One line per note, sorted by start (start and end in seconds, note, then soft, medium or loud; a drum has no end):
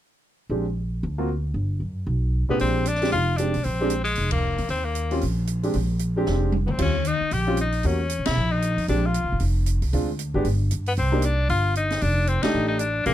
0.49 1.00 A#1 medium
0.49 0.64 G#3 soft
0.49 0.64 C4 soft
0.49 0.64 D4 soft
0.49 0.64 G4 medium
1.03 1.53 D2 medium
1.18 1.28 A#3 medium
1.18 1.28 C4 soft
1.18 1.28 F4 soft
1.18 1.28 F#4 medium
1.54 1.79 G1 medium
1.80 2.05 F#2 medium
2.07 2.46 B1 medium
2.49 2.84 A#2 medium
2.49 2.84 G#3 medium
2.49 2.60 B3 medium
2.49 2.84 C4 medium
2.49 2.84 D4 medium
2.49 2.84 G4 medium
2.49 muted upright bass stroke soft
2.59 3.10 A#1 medium
2.59 2.89 C4 medium
2.59 open hi-hat soft
2.86 3.11 D4 medium
2.86 closed hi-hat soft
2.95 snare soft
3.02 3.11 G#3 medium
3.02 3.12 C4 medium
3.02 3.12 D4 medium
3.02 3.12 G4 medium
3.02 snare soft
3.02 open hi-hat soft
3.12 3.52 F1 medium
3.12 3.39 F4 loud
3.12 open hi-hat soft
3.37 3.53 G#3 medium
3.37 3.53 C4 soft
3.37 3.65 D4 medium
3.37 3.53 D4 soft
3.37 3.53 G4 medium
3.37 closed hi-hat soft
3.54 3.65 B1 medium
3.54 open hi-hat soft
3.64 4.15 A#1 medium
3.64 4.03 C4 medium
3.64 open hi-hat soft
3.81 3.90 G#3 medium
3.81 3.90 C4 medium
3.81 3.91 D4 medium
3.81 3.91 G4 medium
3.90 closed hi-hat medium
4.04 4.30 G#3 medium
4.04 open hi-hat soft
4.15 4.56 F1 medium
4.15 open hi-hat soft
4.31 4.67 A#3 medium
4.31 kick medium
4.31 ride medium
4.58 4.68 E2 medium
4.58 open hi-hat soft
4.69 5.19 D#2 medium
4.69 4.86 C4 medium
4.69 open hi-hat soft
4.85 5.22 A#3 medium
4.95 closed hi-hat soft
5.11 5.21 G3 medium
5.11 5.21 C4 medium
5.11 5.21 C#4 medium
5.11 5.21 F4 medium
5.11 open hi-hat soft
5.21 5.72 A#1 medium
5.21 open hi-hat soft
5.47 closed hi-hat soft
5.63 5.73 G#3 medium
5.63 5.73 C4 medium
5.63 5.74 D4 medium
5.63 5.74 G4 medium
5.63 open hi-hat soft
5.74 6.24 A#1 medium
5.74 open hi-hat soft
5.99 closed hi-hat soft
6.16 6.51 G#3 medium
6.16 6.51 C4 medium
6.16 6.51 D4 medium
6.16 6.52 G4 medium
6.26 6.66 F1 medium
6.26 snare soft
6.52 high tom medium
6.66 6.78 D2 medium
6.66 6.73 B3 medium
6.66 mid tom medium
6.72 6.81 C4 medium
6.78 7.18 D#2 medium
6.78 6.93 G3 medium
6.78 6.93 C4 soft
6.78 6.93 C#4 soft
6.78 6.93 F4 medium
6.78 kick medium
6.78 crash medium
6.82 7.08 C#4 medium
7.05 7.34 D#4 medium
7.05 closed hi-hat soft
7.21 muted upright bass stroke soft
7.31 7.81 A#1 medium
7.31 7.58 G4 loud
7.31 open hi-hat soft
7.47 7.57 G3 medium
7.47 7.57 C4 medium
7.47 7.57 C#4 medium
7.47 7.57 F4 medium
7.57 7.87 D#4 medium
7.57 closed hi-hat soft
7.72 open hi-hat soft
7.83 8.17 E2 medium
7.83 7.98 G3 medium
7.83 7.98 A#3 soft
7.83 7.99 C#4 soft
7.83 8.27 C#4 medium
7.83 7.98 F#4 medium
7.83 open hi-hat soft
8.09 closed hi-hat medium
8.19 8.27 A#2 medium
8.26 8.36 B2 medium
8.26 8.53 E4 loud
8.26 snare medium
8.26 ride medium
8.37 8.75 A#1 medium
8.51 8.88 D#4 medium
8.62 closed hi-hat soft
8.77 8.87 F2 medium
8.77 open hi-hat soft
8.88 9.21 A#1 medium
8.88 9.03 G#3 soft
8.88 9.03 C4 soft
8.88 9.07 D4 medium
8.88 9.03 D4 soft
8.88 9.03 G4 medium
8.88 open hi-hat soft
9.06 9.42 F4 medium
9.14 closed hi-hat soft
9.24 9.32 C2 medium
9.32 9.40 G#1 medium
9.40 9.79 F1 medium
9.40 open hi-hat soft
9.66 closed hi-hat soft
9.82 9.92 C2 medium
9.82 open hi-hat soft
9.93 10.32 D2 medium
9.93 10.07 G#3 medium
9.93 10.07 C4 soft
9.93 10.07 D4 soft
9.93 10.08 F4 medium
9.93 open hi-hat soft
10.19 closed hi-hat soft
10.34 10.44 G#1 medium
10.34 10.44 G#3 medium
10.34 10.45 B3 medium
10.34 10.44 D4 medium
10.34 10.45 G4 medium
10.45 10.69 G1 medium
10.45 open hi-hat soft
10.71 10.96 G2 medium
10.71 closed hi-hat soft
10.86 10.92 B3 medium
10.86 open hi-hat soft
10.97 11.47 C2 medium
10.97 11.26 C4 medium
10.97 open hi-hat soft
11.12 11.22 A#3 medium
11.12 11.22 D4 medium
11.12 11.22 D#4 medium
11.12 11.23 G4 medium
11.22 11.49 D4 medium
11.22 closed hi-hat medium
11.49 11.99 G1 medium
11.49 11.74 F4 loud
11.49 open hi-hat soft
11.75 12.04 D#4 medium
11.75 closed hi-hat soft
11.90 snare medium
11.90 open hi-hat soft
12.01 12.41 F1 medium
12.01 12.30 D4 loud
12.01 open hi-hat soft
12.27 12.44 C4 medium
12.27 closed hi-hat medium
12.42 12.78 A3 medium
12.42 12.78 D4 medium
12.42 12.67 D#4 loud
12.42 12.79 D#4 medium
12.42 12.79 G4 medium
12.42 muted upright bass stroke soft
12.42 snare medium
12.42 ride medium
12.54 13.04 A1 medium
12.68 12.81 D#4 medium
12.79 13.06 D4 medium
12.79 closed hi-hat soft
13.06 13.14 A#1 medium
13.06 13.14 G#3 medium
13.06 13.13 A#3 loud
13.06 13.14 C4 medium
13.06 13.14 D4 soft
13.06 13.14 G4 medium
13.06 open hi-hat soft